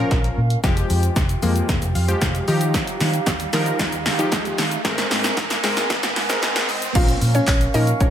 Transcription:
Already playing: synth keys F3 C#4, flute section C#4 A#4 F5, impact, riser
0.00 synth keys A#4
0.11 fingered electric bass A#1, kick, snare, closed hi-hat
0.24 closed hi-hat
0.37 fingered electric bass A#2
0.50 closed hi-hat
0.63 fingered electric bass F1, synth keys F3 G#3 G4, flute section F4 G4 G5, kick, snare, closed hi-hat, shaker
0.77 closed hi-hat, shaker
0.90 fingered electric bass F2, open hi-hat, shaker
1.03 closed hi-hat, shaker
1.16 fingered electric bass F1, kick, snare, closed hi-hat, shaker
1.29 closed hi-hat, shaker
1.42 fingered electric bass F2, synth keys F3 G#3 A#3, open hi-hat, shaker
1.56 closed hi-hat, shaker
1.69 fingered electric bass F1, kick, snare, closed hi-hat, shaker
1.82 fingered electric bass F1, closed hi-hat, shaker
1.95 fingered electric bass F2, synth keys F5, open hi-hat, shaker
2.08 synth keys F3 G#3 G4, closed hi-hat, shaker
2.21 fingered electric bass F1, synth keys F5, kick, snare, closed hi-hat, shaker
2.35 closed hi-hat, shaker
2.48 fingered electric bass D#3, synth keys F3 D#4 G4 A#5, flute section D#4 G4 F5, open hi-hat, shaker
2.61 closed hi-hat, shaker
2.74 kick, snare, closed hi-hat, shaker
2.87 closed hi-hat, shaker
3.00 fingered electric bass D#3, snare, open hi-hat, shaker
3.13 closed hi-hat, shaker
3.27 fingered electric bass D#2, kick, snare, clap, closed hi-hat, shaker
3.40 closed hi-hat, shaker
3.53 fingered electric bass D#3, synth keys F3 D#4 A#4, snare, open hi-hat, shaker
3.66 closed hi-hat, shaker
3.79 fingered electric bass D#2, kick, snare, closed hi-hat, shaker
3.92 fingered electric bass D#2, closed hi-hat, shaker
4.06 fingered electric bass D#3, snare, open hi-hat, shaker
4.19 synth keys F3 D#4 G4, closed hi-hat, shaker
4.32 fingered electric bass D#2, kick, snare, clap, closed hi-hat, shaker
4.45 closed hi-hat, shaker
4.58 fingered electric bass D#3, snare, open hi-hat, shaker
4.71 closed hi-hat, shaker
4.85 fingered electric bass G#1, synth keys G#3 C4 A#4, flute section C4 A#4 G#5, kick, snare, closed hi-hat, shaker
4.98 snare, closed hi-hat, shaker
5.11 fingered electric bass G#2, snare, open hi-hat, shaker
5.24 snare, closed hi-hat, shaker
5.37 fingered electric bass G#1, kick, snare, clap, closed hi-hat, shaker
5.50 snare, closed hi-hat, shaker
5.63 fingered electric bass G#2, synth keys G#3 C4 A#4, snare, open hi-hat, shaker
5.77 snare, closed hi-hat, shaker
5.90 fingered electric bass G#1, kick, snare, closed hi-hat, shaker
6.03 fingered electric bass G#1, snare, closed hi-hat, shaker
6.16 fingered electric bass G#2, snare, open hi-hat, shaker
6.29 synth keys G#3 C4 A#4, snare, closed hi-hat, shaker
6.42 fingered electric bass G#1, synth keys A#5, snare, clap, closed hi-hat, shaker
6.56 snare, closed hi-hat, shaker
6.69 fingered electric bass G#2, synth keys D#5, open hi-hat, shaker
6.82 closed hi-hat, shaker
6.95 fingered electric bass A#1, synth keys F3 A#3 C#4 A#4, flute section C#4 A#4 F5, synth pluck F4 F5, kick, closed hi-hat, crash, shaker
7.08 closed hi-hat, shaker
7.21 fingered electric bass A#2, open hi-hat, shaker
7.35 synth pluck C#4 C#5, closed hi-hat, shaker
7.48 fingered electric bass A#1, synth pluck C#4 C#5, kick, clap, closed hi-hat, shaker
7.61 closed hi-hat, shaker
7.74 fingered electric bass A#2, synth keys F3 A#3 C#4 A#4, synth pluck D#4 D#5, open hi-hat, shaker
7.87 closed hi-hat, shaker
8.00 fingered electric bass A#1, synth keys F3 A#3 C#4 A#4, synth pluck C#4 C#5, kick, closed hi-hat, shaker

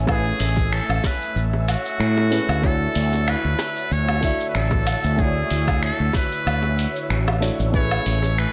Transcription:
Already playing: fretless electric bass A1, grand piano A3 C#4 E4 E5 G#5, analog synth pad A3 C#5 G#5, synth texture E5 E6
0.06 grand piano A3 C#4 E4 B4 G#5, muted trumpet G#4, kick, high bongo, cabasa, low woodblock
0.40 fretless electric bass A1, closed hi-hat, cabasa
0.56 kick, high bongo, cabasa
0.73 muted trumpet A4, finger snap, cabasa
0.89 fretless electric bass A1, low woodblock
1.04 muted trumpet B4, kick, closed hi-hat, high bongo, cabasa
1.22 cabasa
1.36 fretless electric bass A1, cabasa
1.53 high bongo
1.68 muted trumpet F#4, closed hi-hat, cabasa, low woodblock
1.86 cabasa
1.99 fretless electric bass A2, finger snap, cabasa
2.17 high bongo
2.31 grand piano A3 C#4 E4 G#4 B4, closed hi-hat, cabasa
2.49 fretless electric bass D2, cabasa, low woodblock
2.62 analog synth pad D3 E4 F#4, grand piano A3 D4 E4 F#4 C#5, kick, high bongo, cabasa
2.66 muted trumpet A4
2.95 fretless electric bass D2, closed hi-hat, cabasa
3.13 high bongo, cabasa
3.28 muted trumpet B4, finger snap, cabasa, low woodblock
3.44 fretless electric bass D2
3.59 closed hi-hat, high bongo, cabasa
3.76 cabasa
3.91 fretless electric bass D2, muted trumpet C#5, cabasa
4.08 high bongo, low woodblock
4.21 grand piano A3 D4 E4 F#4 E5, kick, closed hi-hat, cabasa
4.40 cabasa
4.49 muted trumpet B4
4.55 fretless electric bass A1, muted trumpet A4, finger snap, cabasa
4.71 kick, high bongo
4.87 closed hi-hat, cabasa, low woodblock
5.04 fretless electric bass D2, cabasa
5.17 grand piano A3 D4 E4 F#4 C#5, muted trumpet G#4, kick, high bongo, cabasa
5.51 fretless electric bass D2, closed hi-hat, cabasa
5.67 kick, high bongo, cabasa, low woodblock
5.83 muted trumpet A4, finger snap, cabasa
6.00 fretless electric bass D2
6.13 muted trumpet B4, kick, closed hi-hat, high bongo, cabasa
6.32 cabasa
6.46 fretless electric bass D2, cabasa, low woodblock
6.63 high bongo
6.79 closed hi-hat, cabasa
6.96 cabasa
7.10 fretless electric bass A1, finger snap, cabasa
7.28 high bongo, low woodblock
7.40 grand piano A3 D4 E4 F#4 C#5, closed hi-hat, cabasa
7.59 fretless electric bass A1, cabasa
7.72 grand piano A3 C#4 E4 G#4 B4, analog synth pad A3 G#5, muted trumpet C#5, kick, high bongo, cabasa
7.91 low woodblock
8.06 fretless electric bass A1, closed hi-hat, cabasa
8.23 high bongo, cabasa
8.38 muted trumpet B4, finger snap, cabasa

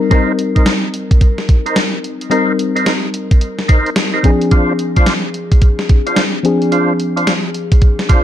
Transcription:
Already playing: fm electric piano G3 C4 D#4 A#4
0.10 fm electric piano G3 C4 D#4 A#4, tonewheel organ D#4 A#4 C5, kick, closed hi-hat
0.39 closed hi-hat
0.55 tonewheel organ D#4 A#4 C5, kick, closed hi-hat
0.66 snare, closed hi-hat
0.94 closed hi-hat
1.11 kick, closed hi-hat
1.21 kick, closed hi-hat
1.38 snare
1.49 kick, closed hi-hat
1.66 tonewheel organ D#4 A#4 C5, closed hi-hat
1.76 snare, closed hi-hat
2.04 closed hi-hat
2.21 closed hi-hat
2.30 fm electric piano G3 C4 D#4 A#4, tonewheel organ D#4 A#4 C5, closed hi-hat
2.59 closed hi-hat
2.76 tonewheel organ D#4 A#4 C5, closed hi-hat
2.86 snare, closed hi-hat
3.14 closed hi-hat
3.31 kick, closed hi-hat
3.41 closed hi-hat
3.59 snare
3.68 tonewheel organ D#4 A#4 C5, kick, closed hi-hat
3.86 closed hi-hat
3.96 snare, closed hi-hat
4.13 tonewheel organ D#4 A#4 C5
4.23 fm electric piano F3 C4 D4 G#4, kick, closed hi-hat
4.41 closed hi-hat
4.51 tonewheel organ D4 F4 C5, kick, closed hi-hat
4.79 closed hi-hat
4.96 tonewheel organ D4 F4 C5, kick, closed hi-hat
5.06 snare, closed hi-hat
5.34 closed hi-hat
5.52 kick, closed hi-hat
5.62 kick, closed hi-hat
5.79 snare
5.89 kick, closed hi-hat
6.06 tonewheel organ D4 F4 C5, closed hi-hat
6.16 snare, closed hi-hat
6.43 fm electric piano F3 C4 D4 G#4, closed hi-hat
6.62 closed hi-hat
6.72 tonewheel organ D4 F4 C5, closed hi-hat
7.00 closed hi-hat
7.16 tonewheel organ D4 F4 C5, closed hi-hat
7.27 snare, closed hi-hat
7.54 closed hi-hat
7.72 kick, closed hi-hat
7.82 kick, closed hi-hat
7.99 snare
8.09 tonewheel organ D4 F4 C5, kick, closed hi-hat

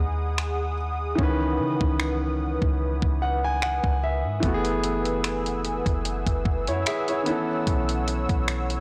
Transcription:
Already playing: 808-style bass D#2, grand piano G#3 D#4 E4 B4, analog synth pad G#4 F#5 D#6
0.38 finger snap
1.15 808-style bass C#2, grand piano E3 C#4, analog synth pad B4, kick
1.20 grand piano D#3 B4
1.59 808-style bass C#3
1.81 808-style bass C#2, kick
2.00 finger snap
2.62 808-style bass C#2, kick
3.02 808-style bass C#2, kick
3.22 grand piano F#5
3.44 grand piano G#5
3.62 grand piano F#5, finger snap
3.84 808-style bass C#2, kick
4.04 grand piano E5
4.24 808-style bass G#2
4.40 808-style bass F#1, grand piano E3 A3, analog synth pad B4 F#5 G#5 E6, kick, closed hi-hat
4.45 grand piano B3 F#4
4.54 grand piano G#4
4.65 closed hi-hat
4.84 closed hi-hat
5.05 closed hi-hat
5.24 finger snap, closed hi-hat
5.46 closed hi-hat
5.65 closed hi-hat
5.86 808-style bass F#1, kick, closed hi-hat
6.05 closed hi-hat
6.27 808-style bass F#1, kick, closed hi-hat
6.45 kick
6.67 808-style bass F#2, grand piano E4 C#5, closed hi-hat
6.86 grand piano G#4 E5, finger snap, closed hi-hat
7.08 grand piano E4 C#5, closed hi-hat
7.23 grand piano D#3 B3, analog synth pad C#5, closed hi-hat
7.28 grand piano E3 C#4 A4
7.67 808-style bass B1, kick, closed hi-hat
7.89 closed hi-hat
8.08 closed hi-hat
8.29 808-style bass B1, kick, closed hi-hat
8.48 finger snap, closed hi-hat
8.70 closed hi-hat

